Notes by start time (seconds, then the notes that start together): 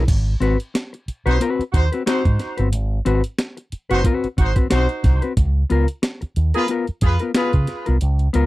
0.08 G#1, kick, closed hi-hat, crash
0.40 G#1 C4 F#4 B4, closed hi-hat
0.60 closed hi-hat
0.74 muted clean electric guitar stroke, snare, closed hi-hat
0.93 muted clean electric guitar stroke, closed hi-hat
1.08 muted fingered electric bass stroke, closed hi-hat
1.25 B1 C4 D#4 F#4 B4 C5, closed hi-hat
1.40 C4 F#4 B4, closed hi-hat
1.59 muted fingered electric bass stroke, closed hi-hat
1.72 D#2 D#4 F#4 C5, muted clean electric guitar stroke, kick, closed hi-hat
1.92 C4 F#4 B4, closed hi-hat
2.06 C4 D#4 F#4 C5, snare, closed hi-hat
2.25 G#2, kick, closed hi-hat
2.39 muted clean electric guitar stroke, snare, closed hi-hat
2.57 G1 C4 F#4 B4, closed hi-hat
2.73 G#1, closed hi-hat
3.05 G#1 C4 F#4 B4, closed hi-hat
3.24 closed hi-hat
3.39 muted clean electric guitar stroke, snare, closed hi-hat
3.57 muted clean electric guitar stroke, closed hi-hat
3.72 muted fingered electric bass stroke, closed hi-hat
3.90 F#1 C4 D#4 F#4 B4 C5, closed hi-hat
4.04 C4 F#4 B4, kick, closed hi-hat
4.24 muted fingered electric bass stroke, closed hi-hat
4.37 G#1 D#4 F#4 C5, muted clean electric guitar stroke, kick, closed hi-hat
4.56 C4 F#4 B4, kick, closed hi-hat
4.70 B1 C4 D#4 F#4 C5, snare, closed hi-hat
4.89 closed hi-hat
5.03 C2, muted clean electric guitar stroke, kick, snare, closed hi-hat
5.22 C4 F#4 B4, closed hi-hat
5.37 C#2, kick, closed hi-hat
5.70 C#2 B3 F4 A#4, closed hi-hat
5.88 closed hi-hat
6.02 muted clean electric guitar stroke, snare, closed hi-hat
6.21 muted clean electric guitar stroke, muted fingered electric bass stroke, closed hi-hat
6.36 D#2, closed hi-hat
6.54 B3 F4 G#4 A#4 B4, closed hi-hat
6.68 B3 F4 A#4, closed hi-hat
6.87 muted fingered electric bass stroke, closed hi-hat
7.01 F2 F4 G#4 B4, muted clean electric guitar stroke, kick, closed hi-hat
7.19 B3 F4 A#4, closed hi-hat
7.35 B3 F4 G#4 B4, snare, closed hi-hat
7.53 C#3, kick, closed hi-hat
7.67 muted clean electric guitar stroke, snare, closed hi-hat
7.86 C2 B3 F4 A#4, closed hi-hat
8.01 C#2, closed hi-hat
8.19 closed hi-hat
8.33 C#2 B3 F4 A#4, closed hi-hat